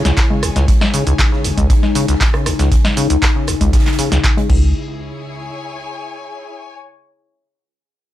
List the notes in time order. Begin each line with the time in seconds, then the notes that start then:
Already playing: C#3 E3 G#3 E4 G#4 C#5 G#5
0.05 C#2, snare, closed hi-hat, shaker
0.17 C#2, kick, snare, clap, closed hi-hat, shaker
0.30 C#3, low conga
0.43 C#2, cross-stick, closed hi-hat, open hi-hat, shaker
0.56 C#2, snare, closed hi-hat, low conga, shaker
0.68 D#4, kick, closed hi-hat, shaker
0.81 snare, low conga
0.94 C#3, closed hi-hat, open hi-hat, shaker
1.07 C#2, closed hi-hat, shaker
1.19 C#2, kick, snare, clap, closed hi-hat, shaker
1.32 C#3, snare
1.44 C#2, closed hi-hat, open hi-hat, shaker
1.58 C#2, kick, closed hi-hat, low conga, shaker
1.70 C#2, kick, closed hi-hat, shaker
1.83 snare, low conga
1.95 C#3, closed hi-hat, open hi-hat, shaker
2.08 C#2, snare, closed hi-hat, shaker
2.20 C#2, kick, snare, clap, closed hi-hat, shaker
2.34 C#3, cross-stick, closed hi-hat
2.46 C#2, cross-stick, closed hi-hat, open hi-hat, shaker
2.59 C#2, snare, closed hi-hat, shaker
2.72 kick, closed hi-hat, shaker
2.85 snare, closed hi-hat, low conga
2.97 C#3, closed hi-hat, open hi-hat, shaker
3.10 C#2, closed hi-hat, shaker
3.22 C#2, kick, snare, clap, closed hi-hat, shaker
3.36 C#3
3.47 C#2, cross-stick, closed hi-hat, open hi-hat, shaker
3.61 C#2, kick, closed hi-hat, low conga, shaker
3.73 kick, snare, closed hi-hat, shaker
3.80 snare, closed hi-hat
3.86 snare, clap, closed hi-hat
3.93 snare, closed hi-hat
3.99 C#3, closed hi-hat, open hi-hat, shaker
4.12 C#2, snare, closed hi-hat, shaker
4.24 C#2, kick, clap, closed hi-hat, shaker
4.37 C#3, closed hi-hat, low conga
4.50 C#2 E4, kick, crash
4.57 G#4
4.91 C#5
4.98 G#5